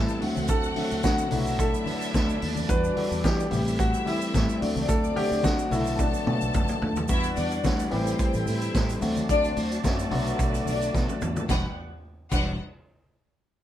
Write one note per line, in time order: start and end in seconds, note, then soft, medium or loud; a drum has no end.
0.00 0.24 E3 medium
0.00 0.19 G3 medium
0.00 0.24 G3 medium
0.00 0.21 A3 medium
0.00 1.29 A3 medium
0.00 0.21 C4 medium
0.00 1.29 C4 medium
0.00 0.18 E4 medium
0.00 0.22 G4 medium
0.00 0.19 A4 medium
0.00 0.23 A4 medium
0.00 0.19 A5 loud
0.09 shaker medium
0.20 0.33 D2 medium
0.20 0.69 D3 medium
0.20 1.30 D3 medium
0.20 0.69 F#3 medium
0.20 0.69 A3 medium
0.20 0.69 C4 medium
0.20 1.30 F#4 medium
0.20 1.29 F#4 medium
0.20 0.70 F#4 medium
0.20 1.29 F#5 loud
0.20 open hi-hat medium
0.36 0.46 C#2 medium
0.36 high conga medium
0.36 shaker medium
0.48 0.69 D2 medium
0.48 1.00 A4 loud
0.48 kick loud
0.48 closed hi-hat medium
0.48 shaker medium
0.63 shaker medium
0.76 1.29 D3 medium
0.76 1.30 F#3 medium
0.76 1.30 A3 medium
0.76 1.32 C4 medium
0.76 1.32 D4 medium
0.76 open hi-hat medium
0.76 muted conga medium
0.91 1.01 D2 medium
0.91 shaker medium
1.03 1.25 D3 loud
1.03 1.61 F#4 loud
1.03 kick loud
1.03 snare loud
1.03 closed hi-hat medium
1.03 high conga medium
1.03 shaker medium
1.18 shaker medium
1.30 1.72 B1 medium
1.30 1.79 D3 medium
1.30 1.79 F#3 medium
1.30 1.79 A3 medium
1.30 2.68 A3 medium
1.30 1.80 B3 medium
1.30 2.68 B3 medium
1.30 3.50 D4 medium
1.30 2.66 E4 medium
1.30 1.39 E4 medium
1.30 2.66 E5 loud
1.30 open hi-hat medium
1.30 muted conga soft
1.30 low conga medium
1.30 shaker medium
1.39 1.83 F#4 loud
1.47 shaker medium
1.59 2.38 A4 medium
1.59 kick loud
1.59 closed hi-hat medium
1.59 shaker medium
1.74 shaker medium
1.86 2.58 D3 medium
1.86 2.58 F#3 medium
1.86 2.58 A3 medium
1.86 2.59 B3 medium
1.86 2.59 A4 medium
1.86 open hi-hat medium
1.86 muted conga medium
2.02 shaker medium
2.14 2.35 D2 medium
2.14 kick loud
2.14 snare loud
2.14 closed hi-hat medium
2.14 high conga medium
2.14 shaker medium
2.29 shaker medium
2.42 2.62 D#2 loud
2.42 open hi-hat medium
2.56 high conga medium
2.56 shaker medium
2.68 2.90 E2 loud
2.68 2.92 E3 medium
2.68 3.51 E3 medium
2.68 2.93 G3 medium
2.68 2.93 B3 medium
2.68 2.93 D4 medium
2.68 3.50 D4 medium
2.68 2.93 F#4 medium
2.68 3.52 F#4 medium
2.68 4.60 G4 medium
2.68 3.26 B4 loud
2.68 3.50 D5 medium
2.68 kick loud
2.68 closed hi-hat medium
2.68 shaker loud
2.84 shaker medium
2.96 3.49 E3 medium
2.96 3.49 G3 medium
2.96 3.52 B3 medium
2.96 3.52 D4 medium
2.96 3.52 A4 medium
2.96 open hi-hat medium
2.96 muted conga medium
3.11 3.21 E2 medium
3.11 shaker medium
3.24 3.45 E3 loud
3.24 3.81 G4 loud
3.24 kick loud
3.24 snare loud
3.24 closed hi-hat medium
3.24 high conga loud
3.24 shaker medium
3.40 shaker medium
3.50 3.92 A1 medium
3.50 3.99 E3 medium
3.50 3.99 G3 medium
3.50 3.99 A3 medium
3.50 7.06 A3 medium
3.50 3.99 C4 medium
3.50 5.70 C4 medium
3.50 4.60 E4 medium
3.50 3.58 F#4 medium
3.50 4.60 E5 loud
3.50 open hi-hat medium
3.50 muted conga soft
3.50 low conga medium
3.50 shaker medium
3.58 4.03 G4 medium
3.67 shaker medium
3.79 4.08 F#4 medium
3.79 kick loud
3.79 closed hi-hat medium
3.79 shaker medium
3.94 shaker medium
4.05 4.61 E3 medium
4.05 4.61 G3 medium
4.05 4.60 A3 medium
4.05 4.60 C4 medium
4.05 4.58 E4 medium
4.05 4.62 G4 medium
4.05 open hi-hat medium
4.05 muted conga medium
4.21 shaker medium
4.34 4.45 A2 loud
4.34 kick loud
4.34 snare loud
4.34 closed hi-hat medium
4.34 high conga medium
4.34 shaker medium
4.49 shaker medium
4.60 4.78 D2 medium
4.60 5.09 D3 medium
4.60 7.07 D3 medium
4.60 5.09 F#3 medium
4.60 5.09 A3 medium
4.60 5.10 C4 medium
4.60 5.69 D4 medium
4.60 5.71 F#4 medium
4.60 5.10 F#4 medium
4.60 5.69 D5 loud
4.60 open hi-hat medium
4.76 4.86 C#2 medium
4.76 high conga medium
4.76 shaker medium
4.89 5.10 D2 loud
4.89 5.17 A4 loud
4.89 kick loud
4.89 closed hi-hat medium
4.89 shaker loud
5.04 shaker medium
5.15 5.69 D3 medium
5.15 5.70 F#3 medium
5.15 5.70 A3 medium
5.15 5.72 C4 medium
5.15 5.71 F#4 medium
5.15 5.45 G4 loud
5.15 open hi-hat medium
5.15 muted conga medium
5.31 5.41 D2 medium
5.31 shaker medium
5.43 5.65 D3 loud
5.43 5.72 F#4 loud
5.43 kick loud
5.43 snare loud
5.43 closed hi-hat medium
5.43 high conga medium
5.43 shaker medium
5.59 shaker medium
5.71 6.12 B1 medium
5.71 6.19 D3 medium
5.71 6.19 F#3 medium
5.71 6.19 A3 medium
5.71 6.20 B3 medium
5.71 7.08 B3 medium
5.71 6.00 E4 medium
5.71 6.20 F#4 loud
5.71 7.06 A4 medium
5.71 7.06 A5 loud
5.71 open hi-hat medium
5.71 low conga medium
5.71 shaker medium
5.87 shaker medium
5.99 6.77 D4 medium
5.99 kick loud
5.99 high tom medium
5.99 shaker medium
6.14 shaker medium
6.25 6.38 B2 loud
6.25 6.98 D3 medium
6.25 6.98 F#3 medium
6.25 6.98 A3 medium
6.25 6.99 B3 medium
6.25 6.99 F#4 medium
6.25 mid tom medium
6.25 muted conga medium
6.41 6.51 B1 medium
6.41 shaker medium
6.54 6.65 F#1 medium
6.54 kick loud
6.54 mid tom loud
6.54 high conga medium
6.54 shaker medium
6.68 mid tom medium
6.68 shaker medium
6.82 6.97 D2 medium
6.82 floor tom loud
6.96 7.06 D#2 loud
6.96 floor tom loud
6.96 high conga medium
6.96 shaker medium
7.08 7.30 E2 medium
7.08 7.56 E3 medium
7.08 7.56 G3 medium
7.08 7.91 G3 medium
7.08 7.57 B3 medium
7.08 7.57 D4 medium
7.08 7.21 E4 loud
7.08 9.00 E4 medium
7.08 7.57 F#4 loud
7.08 7.91 D5 medium
7.08 7.21 E5 loud
7.08 7.91 F#5 medium
7.08 kick loud
7.08 closed hi-hat medium
7.08 shaker medium
7.23 closed hi-hat soft
7.23 shaker medium
7.37 7.57 E2 loud
7.37 7.48 D4 loud
7.37 7.48 D5 loud
7.37 open hi-hat medium
7.37 muted conga medium
7.37 shaker medium
7.51 closed hi-hat medium
7.51 shaker soft
7.63 7.85 D2 loud
7.63 7.89 E3 medium
7.63 7.90 G3 medium
7.63 7.92 B3 medium
7.63 7.92 D4 medium
7.63 7.92 F#4 medium
7.63 kick loud
7.63 snare loud
7.63 closed hi-hat medium
7.63 high conga loud
7.63 shaker medium
7.79 closed hi-hat medium
7.79 shaker medium
7.90 8.12 A1 medium
7.90 8.86 E3 loud
7.90 8.87 G3 medium
7.90 8.87 A3 medium
7.90 8.87 C4 loud
7.90 8.43 C4 medium
7.90 8.87 G4 loud
7.90 9.01 A4 medium
7.90 8.43 C5 medium
7.90 10.10 C5 medium
7.90 9.01 G5 medium
7.90 open hi-hat medium
7.90 muted conga soft
8.07 closed hi-hat medium
8.07 shaker medium
8.19 kick loud
8.19 closed hi-hat medium
8.19 shaker medium
8.34 8.44 A1 loud
8.34 closed hi-hat medium
8.34 shaker medium
8.46 8.68 A2 loud
8.46 8.98 E4 medium
8.46 8.98 E5 medium
8.46 open hi-hat medium
8.46 muted conga medium
8.46 shaker medium
8.61 closed hi-hat soft
8.61 shaker medium
8.74 8.95 A2 medium
8.74 kick loud
8.74 snare loud
8.74 closed hi-hat medium
8.74 high conga medium
8.74 shaker medium
8.89 closed hi-hat medium
8.89 shaker medium
9.01 9.22 D2 loud
9.01 9.73 D3 loud
9.01 9.73 F#3 medium
9.01 9.73 A3 medium
9.01 9.74 C4 medium
9.01 11.47 F#4 medium
9.01 9.74 F#4 loud
9.01 11.47 D5 medium
9.01 11.47 A5 medium
9.01 open hi-hat medium
9.01 high conga medium
9.01 shaker medium
9.15 closed hi-hat soft
9.15 high conga medium
9.15 shaker medium
9.29 9.50 D2 loud
9.29 9.41 D4 loud
9.29 9.41 D5 loud
9.29 kick loud
9.29 closed hi-hat medium
9.29 shaker medium
9.44 closed hi-hat soft
9.44 shaker medium
9.56 9.77 D2 loud
9.56 9.69 C4 medium
9.56 9.69 C5 medium
9.56 open hi-hat medium
9.56 muted conga medium
9.56 shaker medium
9.71 closed hi-hat soft
9.71 shaker medium
9.84 10.05 F#2 loud
9.84 10.10 D3 medium
9.84 10.10 F#3 medium
9.84 10.10 A3 medium
9.84 10.12 C4 medium
9.84 10.11 F#4 medium
9.84 kick loud
9.84 snare loud
9.84 closed hi-hat medium
9.84 high conga medium
9.84 shaker medium
9.99 closed hi-hat medium
9.99 shaker medium
10.11 10.32 B1 medium
10.11 11.07 D3 loud
10.11 11.07 F#3 loud
10.11 11.07 A3 medium
10.11 10.63 B3 medium
10.11 11.07 B3 medium
10.11 11.07 F#4 loud
10.11 11.48 B4 medium
10.11 10.64 B4 medium
10.11 open hi-hat medium
10.11 muted conga soft
10.11 low conga medium
10.26 closed hi-hat medium
10.26 shaker medium
10.39 10.60 B1 medium
10.39 kick loud
10.39 closed hi-hat medium
10.39 shaker medium
10.54 closed hi-hat soft
10.54 shaker medium
10.66 10.88 B1 medium
10.66 10.89 D4 medium
10.66 10.89 D5 medium
10.66 open hi-hat medium
10.66 muted conga medium
10.66 shaker medium
10.81 closed hi-hat soft
10.81 shaker medium
10.94 11.05 B2 medium
10.94 kick loud
10.94 snare medium
10.94 high conga medium
10.94 shaker medium
11.09 high tom medium
11.09 shaker medium
11.21 11.37 E2 medium
11.21 mid tom loud
11.21 high conga medium
11.21 shaker medium
11.36 11.46 D#2 medium
11.36 floor tom loud
11.36 high conga medium
11.36 shaker medium
11.48 11.65 E1 medium
11.48 11.74 E3 medium
11.48 11.65 E3 medium
11.48 11.65 G3 medium
11.48 11.74 D4 medium
11.48 11.65 D4 medium
11.48 11.65 F#4 medium
11.48 11.74 G4 medium
11.48 11.65 B4 medium
11.48 11.74 F#5 medium
11.48 11.65 F#5 loud
11.48 kick loud
11.48 snare medium
11.48 muted conga medium
11.48 shaker medium
12.32 12.57 E1 loud
12.32 12.57 E3 medium
12.32 12.57 G3 medium
12.32 12.57 D4 medium
12.32 12.57 F#4 loud
12.32 12.57 B4 medium
12.32 12.57 F#5 loud
12.32 kick loud
12.32 crash medium
12.32 muted conga medium
12.32 shaker medium